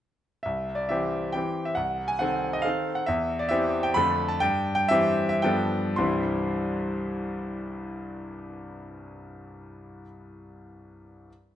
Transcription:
0.43 0.90 C2 soft
0.43 0.78 E5 medium
0.75 0.89 D5 medium
0.89 1.32 E3 soft
0.89 1.32 C4 soft
0.89 1.33 G4 soft
0.89 1.35 E5 medium
1.32 1.73 E3 soft
1.32 1.74 C4 soft
1.32 1.74 G4 soft
1.32 1.66 G5 medium
1.65 1.77 E5 medium
1.75 2.19 C2 soft
1.75 2.09 F#5 medium
2.08 2.20 G#5 medium
2.19 2.60 D#3 soft
2.19 2.60 C4 soft
2.19 2.60 A4 soft
2.19 2.53 F#5 medium
2.53 2.64 D#5 medium
2.62 3.02 D#3 soft
2.62 3.02 C4 soft
2.62 3.02 A4 soft
2.62 2.94 F5 medium
2.95 3.06 F#5 medium
3.06 3.50 E2 medium
3.06 3.39 E5 medium
3.39 3.50 D5 medium
3.49 3.92 E3 medium
3.49 3.92 C4 medium
3.49 3.92 G4 medium
3.49 3.84 E5 medium
3.83 3.95 G5 medium
3.94 4.39 F2 medium
3.94 4.37 D3 soft
3.94 4.37 A3 soft
3.94 4.37 A4 soft
3.94 4.29 B5 loud
4.28 4.40 A5 medium
4.40 4.89 G2 medium
4.40 4.73 G5 loud
4.75 4.89 G5 medium
4.88 5.40 E3 medium
4.88 5.40 C4 medium
4.88 5.40 G4 medium
4.88 5.28 E5 loud
5.29 5.43 E5 medium
5.42 5.96 G2 medium
5.42 5.94 F3 soft
5.42 5.95 B3 soft
5.42 5.97 G5 medium
5.46 5.95 A4 soft
5.96 10.02 C2 medium
5.96 10.02 G2 soft
5.96 10.03 E3 soft
5.96 10.03 G3 soft
5.96 10.03 C4 soft
5.96 10.04 E4 soft
5.96 10.01 C6 medium

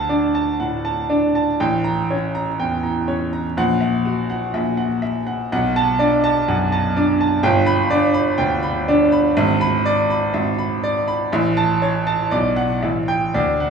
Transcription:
0.00 0.57 D2 medium
0.00 0.60 F#5 medium
0.00 0.25 A5 loud
0.09 0.30 D4 medium
0.09 0.50 D5 medium
0.35 0.75 A5 medium
0.60 0.80 A2 medium
0.60 1.00 F#5 medium
0.85 1.25 A5 medium
1.10 1.30 D4 medium
1.10 1.50 D5 medium
1.35 1.60 A5 medium
1.60 2.56 A1 loud
1.60 1.99 G5 loud
1.84 2.24 A#5 loud
2.10 2.29 C#4 medium
2.10 2.49 C#5 medium
2.35 2.74 A#5 medium
2.59 2.78 E2 medium
2.59 2.98 G5 medium
2.83 3.22 A#5 medium
3.08 3.27 C#4 medium
3.08 3.47 C#5 medium
3.33 3.57 A#5 medium
3.57 4.51 A#1 loud
3.57 3.96 F#5 loud
3.81 4.20 E5 medium
4.05 4.44 F#4 medium
4.30 4.68 F#5 medium
4.54 5.49 A#1 medium
4.54 4.93 E5 medium
4.77 5.17 F#5 medium
5.02 5.42 E5 medium
5.27 5.51 F#5 medium
5.52 6.46 B1 loud
5.52 5.91 F#5 loud
5.76 6.14 A5 loud
5.99 6.19 D4 medium
5.99 6.38 D5 loud
6.24 6.62 A5 loud
6.48 6.68 F#2 medium
6.48 6.87 F#5 medium
6.72 7.11 A5 loud
6.96 7.15 D4 medium
6.96 7.34 D5 medium
7.21 7.44 A5 medium
7.43 8.36 G1 loud
7.43 7.81 G5 loud
7.66 8.05 B5 loud
7.90 8.10 D4 medium
7.90 8.29 D5 loud
8.14 8.53 B5 loud
8.38 8.58 D2 medium
8.38 8.77 G5 loud
8.63 9.02 B5 medium
8.88 9.08 D4 medium
8.88 9.27 D5 medium
9.12 9.36 B5 loud
9.37 10.31 G#1 loud
9.37 9.76 E5 loud
9.61 10.00 B5 loud
9.86 10.25 D5 loud
10.10 10.49 B5 medium
10.34 11.29 G#1 medium
10.34 10.73 E5 loud
10.58 10.98 B5 medium
10.84 11.23 D5 loud
11.08 11.32 B5 loud
11.32 12.29 A1 loud
11.32 11.72 E5 loud
11.57 11.97 A5 loud
11.82 12.22 C#5 medium
12.07 12.32 A5 loud
12.31 12.81 B1 loud
12.31 12.72 D5 loud
12.56 12.82 F#5 loud
12.82 13.33 A1 medium
12.82 13.24 E5 medium
13.08 13.35 G5 loud
13.34 13.70 D2 loud
13.34 13.70 D5 loud
13.60 13.70 F#5 medium

